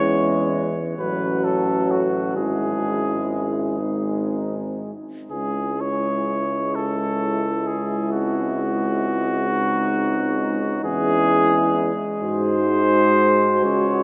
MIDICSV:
0, 0, Header, 1, 6, 480
1, 0, Start_track
1, 0, Key_signature, 4, "minor"
1, 0, Tempo, 914634
1, 1242, Time_signature, 6, 3, 24, 8
1, 1242, Tempo, 958466
1, 2202, Tempo, 1001669
1, 3162, Tempo, 910470
1, 5562, Tempo, 925926
1, 6522, Tempo, 966184
1, 7188, End_track
2, 0, Start_track
2, 0, Title_t, "Cornet"
2, 0, Program_c, 0, 56
2, 0, Note_on_c, 0, 73, 88
2, 355, Note_off_c, 0, 73, 0
2, 518, Note_on_c, 0, 71, 64
2, 755, Note_on_c, 0, 69, 54
2, 763, Note_off_c, 0, 71, 0
2, 1001, Note_on_c, 0, 66, 51
2, 1009, Note_off_c, 0, 69, 0
2, 1236, Note_off_c, 0, 66, 0
2, 1240, Note_on_c, 0, 68, 65
2, 1946, Note_off_c, 0, 68, 0
2, 2694, Note_on_c, 0, 68, 60
2, 2931, Note_on_c, 0, 73, 55
2, 2938, Note_off_c, 0, 68, 0
2, 3407, Note_on_c, 0, 69, 54
2, 3415, Note_off_c, 0, 73, 0
2, 3889, Note_on_c, 0, 68, 46
2, 3897, Note_off_c, 0, 69, 0
2, 4124, Note_off_c, 0, 68, 0
2, 4127, Note_on_c, 0, 66, 69
2, 5540, Note_off_c, 0, 66, 0
2, 5563, Note_on_c, 0, 68, 87
2, 6121, Note_off_c, 0, 68, 0
2, 6280, Note_on_c, 0, 72, 87
2, 6975, Note_off_c, 0, 72, 0
2, 6993, Note_on_c, 0, 73, 69
2, 7188, Note_off_c, 0, 73, 0
2, 7188, End_track
3, 0, Start_track
3, 0, Title_t, "French horn section"
3, 0, Program_c, 1, 60
3, 0, Note_on_c, 1, 64, 54
3, 428, Note_off_c, 1, 64, 0
3, 518, Note_on_c, 1, 66, 50
3, 1231, Note_off_c, 1, 66, 0
3, 1250, Note_on_c, 1, 64, 46
3, 1963, Note_on_c, 1, 63, 40
3, 1966, Note_off_c, 1, 64, 0
3, 2518, Note_off_c, 1, 63, 0
3, 2700, Note_on_c, 1, 64, 45
3, 4825, Note_off_c, 1, 64, 0
3, 4848, Note_on_c, 1, 63, 53
3, 5562, Note_off_c, 1, 63, 0
3, 5563, Note_on_c, 1, 64, 62
3, 6192, Note_off_c, 1, 64, 0
3, 6280, Note_on_c, 1, 66, 62
3, 7188, Note_off_c, 1, 66, 0
3, 7188, End_track
4, 0, Start_track
4, 0, Title_t, "Euphonium"
4, 0, Program_c, 2, 58
4, 0, Note_on_c, 2, 61, 52
4, 422, Note_off_c, 2, 61, 0
4, 511, Note_on_c, 2, 61, 46
4, 1228, Note_off_c, 2, 61, 0
4, 1246, Note_on_c, 2, 61, 44
4, 1960, Note_on_c, 2, 60, 39
4, 1967, Note_off_c, 2, 61, 0
4, 2517, Note_off_c, 2, 60, 0
4, 2688, Note_on_c, 2, 61, 39
4, 4099, Note_off_c, 2, 61, 0
4, 4127, Note_on_c, 2, 60, 43
4, 5540, Note_off_c, 2, 60, 0
4, 5560, Note_on_c, 2, 61, 53
4, 6120, Note_off_c, 2, 61, 0
4, 6278, Note_on_c, 2, 63, 54
4, 6974, Note_off_c, 2, 63, 0
4, 6996, Note_on_c, 2, 61, 39
4, 7188, Note_off_c, 2, 61, 0
4, 7188, End_track
5, 0, Start_track
5, 0, Title_t, "Trombone"
5, 0, Program_c, 3, 57
5, 0, Note_on_c, 3, 56, 54
5, 432, Note_off_c, 3, 56, 0
5, 521, Note_on_c, 3, 54, 54
5, 1246, Note_on_c, 3, 56, 47
5, 1254, Note_off_c, 3, 54, 0
5, 1957, Note_off_c, 3, 56, 0
5, 1960, Note_on_c, 3, 56, 42
5, 2506, Note_off_c, 3, 56, 0
5, 2691, Note_on_c, 3, 56, 41
5, 5537, Note_off_c, 3, 56, 0
5, 5561, Note_on_c, 3, 56, 62
5, 7188, Note_off_c, 3, 56, 0
5, 7188, End_track
6, 0, Start_track
6, 0, Title_t, "Tuba"
6, 0, Program_c, 4, 58
6, 0, Note_on_c, 4, 40, 53
6, 493, Note_off_c, 4, 40, 0
6, 514, Note_on_c, 4, 33, 53
6, 1244, Note_on_c, 4, 32, 45
6, 1252, Note_off_c, 4, 33, 0
6, 2519, Note_off_c, 4, 32, 0
6, 2691, Note_on_c, 4, 37, 40
6, 5537, Note_off_c, 4, 37, 0
6, 5561, Note_on_c, 4, 40, 58
6, 6120, Note_off_c, 4, 40, 0
6, 6276, Note_on_c, 4, 44, 54
6, 6992, Note_on_c, 4, 37, 43
6, 6999, Note_off_c, 4, 44, 0
6, 7188, Note_off_c, 4, 37, 0
6, 7188, End_track
0, 0, End_of_file